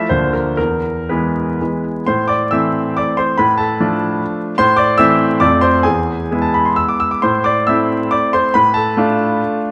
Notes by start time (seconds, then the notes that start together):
0.09 D2 F3 A#3 D4 C5
0.33 A#4
0.57 E2 A#4
1.09 E3 G#3 B3 B4
1.61 E3 G#3 B3
2.06 A2 C5 C6
2.28 D5 D6
2.51 E3 A3 C4 E5 E6
2.97 D5 D6
3.17 C5 C6
3.37 A2 B4 B5
3.57 A4 A5
3.80 F3 A3 D4
4.58 A2 C5 C6
4.77 D5 D6
4.98 E3 A3 C4 E5 E6
5.40 F2 F3 A3 C4 D5 D6
5.61 C5 C6
5.83 E2 G#4 G#5
6.31 G#3 B3 E4
6.42 A5
6.54 B5
6.65 C6
6.76 E6
6.89 D6
7.00 E6
7.11 D6
7.22 A2 C5 C6
7.44 D5 D6
7.67 A3 C4 E4 E5 E6
8.11 D5 D6
8.33 C5 C6
8.54 A2 B4 B5
8.74 A4 A5
8.97 A3 D4 F4